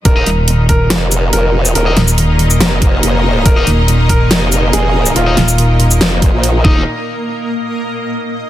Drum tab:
HH |x-x-x-x-x-x-x---|x-x-x-x-x-x-x---|x-x-x-x-x-x-x---|x-x-x-x-x-x-x---|
SH |----------x----x|---x---x--------|----------x----x|---x---x--------|
SD |--------o-------|--o-----o-------|--------o-------|--o-----o-------|
BD |o-----o---------|----------o-----|o-----o---------|----------o---o-|

HH |----------------|
SH |----------------|
SD |----------------|
BD |----------------|